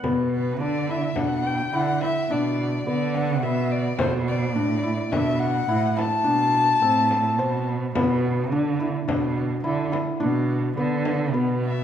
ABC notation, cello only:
X:1
M:7/4
L:1/8
Q:1/4=106
K:Bphr
V:1 name="Cello" clef=bass
B,,2 D,2 B,,2 D, z B,,2 D,2 B,,2 | B,,2 A,,2 B,,2 A,, z B,,2 A,,2 B,,2 | B,,2 D,2 B,,2 D, z B,,2 D,2 B,,2 |]